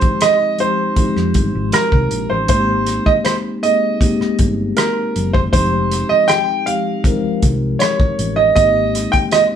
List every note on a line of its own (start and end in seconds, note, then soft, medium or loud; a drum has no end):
0.00 0.20 F3 medium
0.00 0.20 G#3 medium
0.00 0.20 C4 medium
0.00 0.21 D#4 medium
0.00 0.21 G4 medium
0.00 0.23 C5 medium
0.00 muted fingered electric bass stroke soft
0.00 kick medium
0.00 closed hi-hat soft
0.21 0.57 D#5 medium
0.21 cross-stick loud
0.21 closed hi-hat medium
0.58 0.84 F3 medium
0.58 0.84 G#3 soft
0.58 0.84 C4 soft
0.58 0.85 D#4 soft
0.58 0.85 G4 medium
0.58 1.77 C5 medium
0.58 closed hi-hat medium
0.96 1.97 F3 medium
0.96 1.98 G#3 medium
0.96 1.98 C4 medium
0.96 1.98 D#4 medium
0.96 1.99 G4 medium
0.96 kick medium
0.96 closed hi-hat medium
1.16 1.33 F2 medium
1.16 cross-stick soft
1.34 1.52 G1 medium
1.34 kick medium
1.34 closed hi-hat medium
1.55 1.71 G#1 medium
1.72 2.32 A#4 medium
1.72 cross-stick loud
1.72 closed hi-hat medium
1.92 2.09 C2 medium
1.92 kick medium
2.11 2.28 A#1 medium
2.11 closed hi-hat medium
2.30 2.47 A1 medium
2.30 2.48 C5 medium
2.48 2.98 G#1 medium
2.48 3.24 G#3 medium
2.48 3.24 A#3 medium
2.48 3.24 C4 medium
2.48 3.24 D#4 medium
2.48 3.25 G4 medium
2.48 3.08 C5 medium
2.48 kick medium
2.48 closed hi-hat medium
2.87 cross-stick soft
2.87 closed hi-hat medium
3.06 3.11 D#5 medium
3.06 muted fingered electric bass stroke soft
3.06 kick medium
3.25 3.33 C5 medium
3.25 cross-stick medium
3.25 closed hi-hat medium
3.62 3.88 G#3 soft
3.62 3.88 A#3 soft
3.62 3.88 C4 soft
3.62 3.89 D#4 soft
3.62 3.89 G#4 medium
3.62 4.35 D#5 medium
3.62 closed hi-hat medium
3.99 5.00 G#3 medium
3.99 5.01 A#3 medium
3.99 5.01 C4 medium
3.99 5.02 D#4 medium
3.99 5.02 G4 medium
3.99 kick medium
3.99 closed hi-hat medium
4.21 muted fingered electric bass stroke soft
4.21 cross-stick soft
4.39 4.72 G1 medium
4.39 kick medium
4.39 closed hi-hat medium
4.77 5.30 A#4 medium
4.77 cross-stick loud
4.77 closed hi-hat medium
5.16 5.48 F#1 medium
5.16 closed hi-hat medium
5.33 5.38 C5 medium
5.33 kick medium
5.52 6.02 F1 medium
5.52 6.27 F3 medium
5.52 5.59 G3 soft
5.52 6.28 C4 medium
5.52 6.28 D#4 medium
5.52 6.29 G4 medium
5.52 6.11 C5 medium
5.52 kick medium
5.52 closed hi-hat medium
5.59 6.31 G#3 medium
5.92 cross-stick soft
5.92 closed hi-hat medium
6.09 6.29 D#5 medium
6.09 muted fingered electric bass stroke soft
6.28 6.67 G5 medium
6.28 cross-stick loud
6.28 closed hi-hat medium
6.66 6.91 F3 soft
6.66 6.91 G#3 soft
6.66 6.92 C4 soft
6.66 6.92 D#4 soft
6.66 6.92 G4 medium
6.66 7.38 F5 medium
6.66 closed hi-hat medium
7.04 8.05 F3 medium
7.04 8.05 G#3 medium
7.04 8.05 C4 medium
7.04 8.06 D#4 medium
7.04 8.06 A#4 medium
7.04 kick medium
7.04 closed hi-hat medium
7.25 muted fingered electric bass stroke soft
7.42 7.75 C2 medium
7.42 kick medium
7.42 closed hi-hat medium
7.79 8.39 C#5 medium
7.79 cross-stick loud
7.79 closed hi-hat medium
8.00 kick medium
8.19 8.51 A1 medium
8.19 closed hi-hat medium
8.36 8.54 D#5 medium
8.55 9.05 G#1 medium
8.55 9.31 G#3 medium
8.55 9.31 A#3 medium
8.55 9.32 C4 medium
8.55 9.32 D#4 medium
8.55 9.32 G4 medium
8.55 9.15 D#5 medium
8.55 kick medium
8.55 closed hi-hat medium
8.95 cross-stick soft
8.95 closed hi-hat medium
9.12 9.17 G5 medium
9.12 muted fingered electric bass stroke soft
9.12 kick medium
9.12 closed hi-hat soft
9.32 9.41 D#5 medium
9.32 cross-stick medium
9.32 closed hi-hat medium